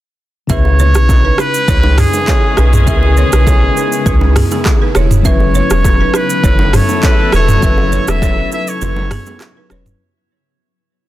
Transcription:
0.47 C#2 C#3 G#3 B3 C#4 E4 G#4 C#5 E5, kick, low conga, shaker
0.52 B4
0.65 high bongo
0.79 E4 C#5, low conga, shaker
0.95 B1, cross-stick, shaker
1.09 kick, high bongo, shaker
1.25 D#4 B4
1.38 D#4 B4, cross-stick, shaker
1.54 shaker
1.68 C#2 E3 G#3 C#4 E4 G#4 C#5, kick, low conga, shaker
1.83 low bongo
1.98 G#4, cross-stick, mid tom, open hi-hat, shaker
2.13 low bongo, shaker
2.28 E4 C#5, kick, clap, high bongo, shaker
2.57 B1 D#4 B4, cross-stick, high bongo, shaker
2.73 G#4, mid tom, shaker
2.85 C#2 C#3 C#4 E4 G#4 E5, kick, low conga, shaker
2.90 A#4
2.96 B4
3.03 high bongo
3.17 E4 C#5, low conga, shaker
3.32 B1 D#4 B4, cross-stick, shaker
3.47 E4 C#5, kick, high bongo, shaker
3.77 D#4 B4, shaker
3.92 shaker
4.06 C#2 E4 B4, kick, low conga, shaker
4.21 low bongo
4.36 B3 G#4, cross-stick, mid tom, open hi-hat, shaker
4.51 B3 G#4, low bongo, shaker
4.65 kick, cross-stick, clap, high bongo, shaker
4.82 D#4 B4
4.95 E1 E4 C#5, cross-stick, high bongo, shaker
5.11 mid tom, shaker
5.22 F#1 F#3 C#4 E4 B4 E5, kick, low conga, shaker
5.27 B4 C#5
5.40 high bongo
5.55 E4 C#5, low conga, shaker
5.70 E1, cross-stick, shaker
5.84 kick, high bongo, shaker
6.01 D#4 B4
6.14 D#4 B4, cross-stick, shaker
6.30 shaker
6.44 F#1 F#3 A3 E4 A4 C#5, kick, low conga, shaker
6.59 low bongo
6.73 C#5, cross-stick, mid tom, open hi-hat, shaker
6.89 low bongo, shaker
7.03 E4 B4 C#5, kick, clap, high bongo, shaker
7.32 E1 D#4 B4 C#5, cross-stick, high bongo, shaker
7.48 mid tom, shaker
7.60 F#1 F#3 C#4 E4 B4 E5, kick, low conga, shaker
7.65 B4
7.78 high bongo
7.92 E4 C#5, low conga, shaker
8.08 E1 D#4 B4 E5, cross-stick, shaker
8.22 E4 C#5, kick, high bongo, shaker
8.52 D#4 B4 E5, shaker
8.67 C#5, shaker
8.81 F#1 E4 B4, low conga, shaker
8.96 low bongo
9.11 B3 G#4, cross-stick, mid tom, open hi-hat, shaker
9.26 B3 G#4, low bongo, shaker
9.41 cross-stick, clap, high bongo, shaker
9.57 D#4 B4
9.69 E1 F#3 C#4 E4 B4 C#5, cross-stick, shaker
9.86 mid tom, shaker

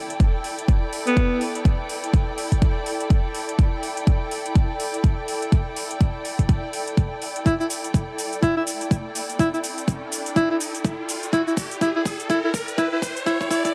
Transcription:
Already playing: E4 A4 D5 G5
0.10 closed hi-hat
0.20 kick, closed hi-hat
0.44 open hi-hat
0.59 closed hi-hat
0.68 kick, closed hi-hat
0.93 open hi-hat
1.07 B3, closed hi-hat
1.17 kick, closed hi-hat
1.41 open hi-hat
1.55 closed hi-hat
1.65 kick, closed hi-hat
1.89 open hi-hat
2.04 closed hi-hat
2.14 kick, closed hi-hat
2.38 open hi-hat
2.52 kick, closed hi-hat
2.62 kick, closed hi-hat
2.86 open hi-hat
3.00 closed hi-hat
3.10 kick, closed hi-hat
3.35 open hi-hat
3.49 closed hi-hat
3.59 kick, closed hi-hat
3.83 open hi-hat
3.97 closed hi-hat
4.07 kick, closed hi-hat
4.31 open hi-hat
4.46 closed hi-hat
4.55 kick, closed hi-hat
4.80 open hi-hat
4.94 closed hi-hat
5.04 kick, closed hi-hat
5.28 open hi-hat
5.42 closed hi-hat
5.52 kick, closed hi-hat
5.76 open hi-hat
5.91 closed hi-hat
6.01 kick, closed hi-hat
6.25 open hi-hat
6.39 kick, closed hi-hat
6.49 kick, closed hi-hat
6.73 open hi-hat
6.88 closed hi-hat
6.97 kick, closed hi-hat
7.22 open hi-hat
7.36 closed hi-hat
7.46 E4, kick, closed hi-hat, riser, cabasa
7.60 E4, cabasa
7.70 open hi-hat, cabasa
7.84 closed hi-hat, cabasa
7.94 kick, closed hi-hat, cabasa
8.18 open hi-hat, cabasa
8.33 closed hi-hat, cabasa
8.43 E4, kick, closed hi-hat, cabasa
8.57 E4
8.67 open hi-hat, cabasa
8.81 closed hi-hat, cabasa
8.91 kick, closed hi-hat, cabasa
9.15 open hi-hat, cabasa
9.29 closed hi-hat, cabasa
9.39 E4, kick, closed hi-hat, cabasa
9.54 E4, cabasa
9.64 open hi-hat, cabasa
9.78 closed hi-hat, cabasa
9.88 kick, closed hi-hat, cabasa
10.12 open hi-hat, cabasa
10.26 closed hi-hat, cabasa
10.36 E4, kick, closed hi-hat, cabasa
10.50 E4
10.60 open hi-hat, cabasa
10.75 closed hi-hat, cabasa
10.85 kick, closed hi-hat, cabasa
11.09 open hi-hat, cabasa
11.23 closed hi-hat, cabasa
11.33 E4, kick, closed hi-hat, cabasa
11.47 E4, cabasa
11.57 kick, open hi-hat, cabasa
11.71 closed hi-hat, cabasa
11.81 E4, kick, closed hi-hat, cabasa
11.96 E4
12.05 kick, open hi-hat, cabasa
12.20 closed hi-hat, cabasa
12.30 E4, kick, closed hi-hat, cabasa
12.44 E4
12.54 kick, open hi-hat, cabasa
12.68 closed hi-hat, cabasa
12.78 E4, kick, closed hi-hat, cabasa
12.92 E4
13.02 kick, open hi-hat, cabasa
13.17 closed hi-hat, cabasa
13.26 E4, kick, closed hi-hat, cabasa
13.41 E4, kick, cabasa
13.51 E4, kick, open hi-hat, cabasa
13.65 E4, kick, closed hi-hat, cabasa

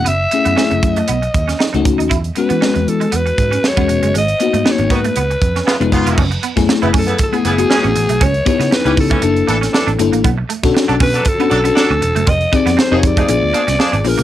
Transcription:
0.05 F#1 B3 E5, closed hi-hat
0.31 A3 C#4 E4 G#4, muted clean electric guitar stroke, closed hi-hat
0.45 F#2 B3, closed hi-hat
0.56 A3 C#4 E4 G#4, snare
0.71 F#1, muted clean electric guitar stroke, closed hi-hat
0.83 F#2 D#5, kick, closed hi-hat
0.96 A3, closed hi-hat
1.08 B1 B3, closed hi-hat
1.22 muted clean electric guitar stroke, closed hi-hat
1.34 D#2, kick, closed hi-hat
1.48 C#4, snare, closed hi-hat
1.59 D#4, snare
1.73 C#2 A3 C#4 D#4 F#4, muted clean electric guitar stroke, closed hi-hat
1.85 C#2, kick, closed hi-hat
1.98 D#2 D#4, closed hi-hat
2.10 E2 E4, kick, closed hi-hat
2.24 closed hi-hat
2.35 G#3 B3 C#4 F#4 B4, muted clean electric guitar stroke, closed hi-hat
2.49 E3 B3, closed hi-hat
2.61 G#3 B3 C#4 F#4, snare
2.74 E2, muted clean electric guitar stroke, closed hi-hat
2.88 E3 A4, closed hi-hat
3.00 G#3, closed hi-hat
3.12 E2 B3, closed hi-hat
3.16 B4
3.26 muted clean electric guitar stroke, closed hi-hat
3.38 G#2, kick, closed hi-hat
3.51 C#4, closed hi-hat
3.64 C#5, snare
3.77 E2 G#3 B3 C#4 F#4, kick, closed hi-hat
3.88 E1, muted clean electric guitar stroke, closed hi-hat
4.03 F#1 G#3, closed hi-hat
4.14 G#1 G#3 D#5, closed hi-hat
4.28 closed hi-hat
4.40 A#3 B3 D#4 F#4, muted clean electric guitar stroke, closed hi-hat
4.53 G#2 A3, closed hi-hat
4.65 A#3 B3 D#4 F#4, snare
4.71 C#5
4.78 G#1, muted clean electric guitar stroke, closed hi-hat
4.90 G#2 D#3 B3 F#4, kick, closed hi-hat
4.95 B4
5.04 A3, closed hi-hat
5.16 C#2 B3, closed hi-hat
5.31 muted clean electric guitar stroke, closed hi-hat
5.42 F2, kick, closed hi-hat
5.56 C#4, snare, closed hi-hat
5.66 C#3 B3 E4 F4, snare
5.80 F1 G#3 B3 D#4 F4, muted clean electric guitar stroke, closed hi-hat
5.92 F#1 C#3 B3 F4, kick, closed hi-hat
6.06 F1 F4, closed hi-hat
6.18 F#1 C#4, kick, crash
6.31 muted clean electric guitar stroke, closed hi-hat
6.43 B3, closed hi-hat
6.56 F#2 A3 B3 E4 G#4, kick, snare, closed hi-hat
6.69 muted clean electric guitar stroke, snare
6.82 F#1 C#3 B3 E4, closed hi-hat
6.93 F#2 C#4, kick, open hi-hat
6.98 A4
7.07 C#3 B3 E4, closed hi-hat
7.18 kick, closed hi-hat
7.23 G#4
7.32 A3 B3 E4 G#4, closed hi-hat
7.45 F#1 C#3 B3 E4, muted clean electric guitar stroke, closed hi-hat
7.58 A3 B3 E4 F#4, closed hi-hat
7.69 E3 C#4 G#4, snare
7.83 A1 C#4, closed hi-hat
7.96 A1, muted clean electric guitar stroke, closed hi-hat
8.09 B1 A3, closed hi-hat
8.21 C#2 C#4 C#5, kick, closed hi-hat
8.34 closed hi-hat
8.45 B3 D#4 E4 G4 C#5, muted clean electric guitar stroke, kick, closed hi-hat
8.60 C#3 B3, snare, closed hi-hat
8.71 C#4 B4, snare
8.85 C#2 E3 B3 C#4 D#4 E4 G4, muted clean electric guitar stroke, closed hi-hat
8.97 C#3 A4, kick, open hi-hat
9.10 E3 A3 C#4 G4, kick, closed hi-hat
9.22 F#1 A#3 D4 E4 A4, muted clean electric guitar stroke, closed hi-hat
9.36 closed hi-hat
9.47 A1 E3 A#3 D4 A4, closed hi-hat
9.61 C#4, snare, closed hi-hat
9.73 E3 D4 A4, snare
9.87 A1 D4, closed hi-hat
9.99 G1 A#3 D4 E4 A4, muted clean electric guitar stroke, closed hi-hat
10.12 A1 A#3, closed hi-hat
10.24 B1 B3, kick, closed hi-hat
10.38 muted clean electric guitar stroke
10.49 A3, closed hi-hat
10.63 B2 C#4 D4 F#4 A4, kick, snare, closed hi-hat
10.74 muted clean electric guitar stroke, snare
10.88 B1 F#3 D4 A4, closed hi-hat
11.00 B2 C#4 B4, kick, open hi-hat
11.14 F#3 D4 A4, closed hi-hat
11.25 A4, kick, closed hi-hat
11.39 B3 C#4 D4 F#4 A4, closed hi-hat
11.50 B1 F#3 D4 A4, muted clean electric guitar stroke, closed hi-hat
11.64 B3 C#4 D4 F#4 A4, closed hi-hat
11.75 F#3 D4 A4, snare
11.90 D2 C#4
12.02 E1, muted clean electric guitar stroke, closed hi-hat
12.15 F#1 A3, closed hi-hat
12.27 F1 C4 D#5, kick, closed hi-hat
12.41 closed hi-hat
12.52 C4 D#4 G4 G#4 D5, muted clean electric guitar stroke, kick, closed hi-hat
12.66 F2 B3, snare, closed hi-hat
12.77 C4 C5, snare
12.91 F1 F3 C4 D#4 G4 G#4 A#4, muted clean electric guitar stroke
12.98 C#5
13.03 F2 D5, kick, closed hi-hat
13.16 F3 A3 D#4 G#4, kick, closed hi-hat
13.28 A#1 B3 D4 F4 G#4, muted clean electric guitar stroke, closed hi-hat
13.42 D2
13.53 F3 A#3 D4 G#4, closed hi-hat
13.67 C2 C#4, snare, closed hi-hat
13.79 F3 D4 G#4, snare
13.92 G#1 D4, closed hi-hat
14.04 A#1 B3 D4 F4 G#4 A#4, muted clean electric guitar stroke, open hi-hat
14.18 C2 A#3, closed hi-hat

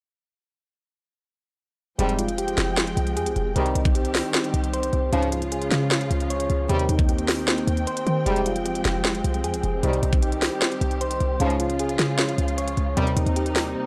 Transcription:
1.99 F1 G#2 C3 F3 G3 G#3 C4 G5, closed hi-hat
2.09 closed hi-hat
2.19 F4, closed hi-hat
2.28 closed hi-hat
2.38 G4, closed hi-hat
2.48 closed hi-hat
2.58 F1, snare, closed hi-hat
2.77 G#3, snare, closed hi-hat
2.87 closed hi-hat
2.97 C2, closed hi-hat
3.07 closed hi-hat
3.17 F2 G#4, closed hi-hat
3.26 C2, closed hi-hat
3.36 F1, closed hi-hat
3.56 C2 C3 D#3 G3 C4 G4, closed hi-hat
3.66 closed hi-hat
3.75 C2 D#4, closed hi-hat
3.85 kick, closed hi-hat
3.95 G4, closed hi-hat
4.05 closed hi-hat
4.15 snare, open hi-hat
4.34 C4, snare, closed hi-hat
4.44 closed hi-hat
4.54 C2, closed hi-hat
4.64 closed hi-hat
4.73 C5, closed hi-hat
4.83 closed hi-hat
4.93 C2, closed hi-hat
5.12 C#2 G#2 C#3 F3 G#3 C#4 F4, closed hi-hat
5.22 closed hi-hat
5.32 F4, closed hi-hat
5.42 closed hi-hat
5.52 G#4, closed hi-hat
5.62 closed hi-hat
5.71 C#3, snare, closed hi-hat
5.91 C#4, snare, closed hi-hat
6.01 closed hi-hat
6.11 C#2, closed hi-hat
6.20 closed hi-hat
6.30 C#5, closed hi-hat
6.40 closed hi-hat
6.50 C#2, closed hi-hat
6.69 D#2 C3 D#3 G3 A#3 C4 G5, closed hi-hat
6.79 closed hi-hat
6.89 D#2 D#4, closed hi-hat
6.99 kick, closed hi-hat
7.09 G4, closed hi-hat
7.18 closed hi-hat
7.28 snare, open hi-hat
7.48 C4, snare, closed hi-hat
7.58 closed hi-hat
7.67 D#2, closed hi-hat
7.77 closed hi-hat
7.87 C5, closed hi-hat
7.97 closed hi-hat
8.07 D#3, closed hi-hat
8.26 F1 G#2 C3 F3 G3 G#3, closed hi-hat
8.36 closed hi-hat
8.46 F4, closed hi-hat
8.56 closed hi-hat
8.65 G4, closed hi-hat
8.75 closed hi-hat
8.85 F1, snare, closed hi-hat
9.05 G#3, snare, closed hi-hat
9.15 closed hi-hat
9.24 C2, closed hi-hat
9.34 closed hi-hat
9.44 F2 G#4, closed hi-hat
9.54 C2, closed hi-hat
9.63 F1, closed hi-hat
9.83 C2 C3 D#3 G3 C4 G4, closed hi-hat
9.93 closed hi-hat
10.03 C2 D#4, closed hi-hat
10.13 kick, closed hi-hat
10.22 G4, closed hi-hat
10.32 closed hi-hat
10.42 snare, open hi-hat
10.62 C4, snare, closed hi-hat
10.72 closed hi-hat
10.81 C2, closed hi-hat
10.91 closed hi-hat
11.01 C5, closed hi-hat
11.11 closed hi-hat
11.20 C2, closed hi-hat
11.40 C#2 G#2 C#3 F3 G#3 C#4 F4, closed hi-hat
11.50 closed hi-hat
11.60 F4, closed hi-hat
11.70 closed hi-hat
11.79 G#4, closed hi-hat
11.89 closed hi-hat
11.99 C#3, snare, closed hi-hat
12.18 C#4, snare, closed hi-hat
12.29 closed hi-hat
12.38 C#2, closed hi-hat
12.48 closed hi-hat
12.58 C#5, closed hi-hat
12.68 closed hi-hat
12.77 C#2, closed hi-hat
12.97 D#2 C3 D#3 G3 A#3 C4 D#4, closed hi-hat
13.07 closed hi-hat
13.16 D#2 D#4, closed hi-hat
13.26 D#2, closed hi-hat
13.36 G4, closed hi-hat
13.46 closed hi-hat
13.56 snare, open hi-hat
13.75 C4

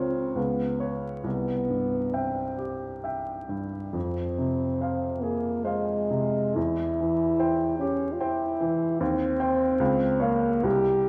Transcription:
Already playing: C#2 C#3 C4 F4 A#4 C#5
0.35 C#2 B3
0.80 B4 C#5
1.24 C2 B3
1.69 G2
2.14 C4 E5 G5
2.58 G4
3.04 E5 G5
3.49 G2
3.93 F2 C4
4.38 C3
4.81 C5 F5
5.22 A#3 G#4
5.64 G#3 C5 F5
6.11 C3
6.56 E2 E4
7.00 E3
7.39 C5 G5
7.79 C#4 G4
8.12 F4
8.20 E4 C5 G5
8.60 E3
9.00 D#2 C4
9.40 C5 G5
9.80 C#2
10.20 A#3 C#5 F5
10.63 C2 G4

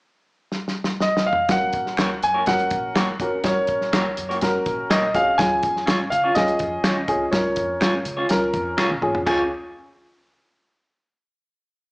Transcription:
0.52 snare
0.68 snare
0.84 snare
1.00 D#5, snare
1.17 snare
1.26 F5
1.33 floor tom
1.48 F#1 C#4 F#4 A#4 F#5, kick, snare, closed hi-hat
1.73 A#1, kick, closed hi-hat
1.86 snare
1.97 C#2 A#3 F#4 A#4 C#5, finger snap, snare, closed hi-hat
2.23 F#2 G#5, closed hi-hat
2.34 A#3 F#4 A#4 C#5
2.46 F#1 C#4 F#4 A#4 F#5, kick, snare, closed hi-hat
2.59 closed hi-hat
2.71 A#1, kick, closed hi-hat
2.95 G#1 A#3 F#4 A#4 C#5, finger snap, snare, closed hi-hat
3.20 F1 C#4 F#4 A#4, kick, closed hi-hat
3.44 F#1 C#4 F#4 A#4 C#5, kick, snare, closed hi-hat
3.67 A#1, kick, closed hi-hat
3.81 snare
3.92 C#2 A#3 F#4 A#4 C#5, finger snap, snare, closed hi-hat
4.17 F#2, closed hi-hat
4.29 A#3 F#4 A#4 C#5, closed hi-hat
4.41 F#1 C#4 F#4 A#4, kick, snare, closed hi-hat
4.66 A#1, kick, closed hi-hat
4.90 B1 A#3 F#4 A#4 C#5 D#5, finger snap, snare, closed hi-hat
5.14 C2 C#4 F#4 G#4 F5, kick, closed hi-hat
5.38 C#2 C#4 F4 G#4 G#5, kick, snare, closed hi-hat
5.63 F2, kick, closed hi-hat
5.76 snare
5.86 G#1 C#4 F4 G#4 C#5, finger snap, snare, closed hi-hat
6.10 C#3 F5, closed hi-hat
6.24 C#4 F4 G#4 C#5
6.35 C#2 C#4 F4 G#4 D#5, kick, snare, closed hi-hat
6.48 closed hi-hat
6.59 F2, kick, closed hi-hat
6.84 D#2 C#4 F4 G#4 C#5, finger snap, snare, closed hi-hat
7.08 C2 C#4 F4 G#4, kick, closed hi-hat
7.31 C#2 C#4 F4 A#4 C#5, kick, snare, closed hi-hat
7.56 F2, kick, closed hi-hat
7.81 G#1 C#4 F4 G#4 C#5, finger snap, snare, closed hi-hat
8.05 C#3, closed hi-hat
8.17 C#4 F4 G#4 C#5
8.29 C#2 C#4 F4 A#4, snare, closed hi-hat
8.54 F2, kick, closed hi-hat
8.77 B1 C#4 F4 G#4 C#5, finger snap, snare
8.90 high tom
9.02 C2 C#4 F4 G#4, mid tom
9.15 floor tom
9.26 C#2 C#4 F4 G#4 C#5, finger snap, kick, crash

